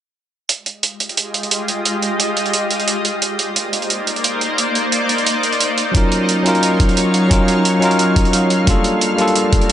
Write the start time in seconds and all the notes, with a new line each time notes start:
0.49 G#3 F4 G4 D#5, closed hi-hat
0.66 closed hi-hat
0.83 closed hi-hat
1.00 closed hi-hat
1.09 closed hi-hat
1.17 closed hi-hat
1.34 closed hi-hat
1.43 closed hi-hat
1.51 closed hi-hat
1.68 closed hi-hat
1.85 closed hi-hat
2.02 closed hi-hat
2.20 closed hi-hat
2.37 closed hi-hat
2.46 closed hi-hat
2.54 closed hi-hat
2.71 closed hi-hat
2.80 closed hi-hat
2.88 closed hi-hat
3.05 closed hi-hat
3.22 A#3 D#4 C5 D5, closed hi-hat
3.39 closed hi-hat
3.56 closed hi-hat
3.73 closed hi-hat
3.82 closed hi-hat
3.90 closed hi-hat
4.07 closed hi-hat
4.16 closed hi-hat
4.24 closed hi-hat
4.41 closed hi-hat
4.58 closed hi-hat
4.75 closed hi-hat
4.92 closed hi-hat
5.09 closed hi-hat
5.18 closed hi-hat
5.27 closed hi-hat
5.43 closed hi-hat
5.53 closed hi-hat
5.61 closed hi-hat
5.78 closed hi-hat
5.92 F#3 C#4 D#4 C#5 F5, kick, closed hi-hat
5.96 F4 A#4
6.12 closed hi-hat
6.29 closed hi-hat
6.43 F#3 C#4 D#4, closed hi-hat
6.47 F4 A#4
6.55 closed hi-hat
6.63 closed hi-hat
6.80 kick, closed hi-hat
6.89 closed hi-hat
6.97 closed hi-hat
7.14 closed hi-hat
7.28 F#3 C#4 D#4, kick, closed hi-hat
7.32 F4 A#4
7.48 closed hi-hat
7.65 closed hi-hat
7.79 F#3 C#4 D#4, closed hi-hat
7.84 F4 A#4
7.91 closed hi-hat
7.99 closed hi-hat
8.16 kick, closed hi-hat
8.25 closed hi-hat
8.33 closed hi-hat
8.50 closed hi-hat
8.65 G3 A#3 D4 A4, kick, closed hi-hat
8.69 F4 A4
8.84 closed hi-hat
9.01 closed hi-hat
9.16 G3 A#3 D4, closed hi-hat
9.20 F4 A4
9.28 closed hi-hat
9.36 closed hi-hat
9.53 kick, closed hi-hat
9.61 closed hi-hat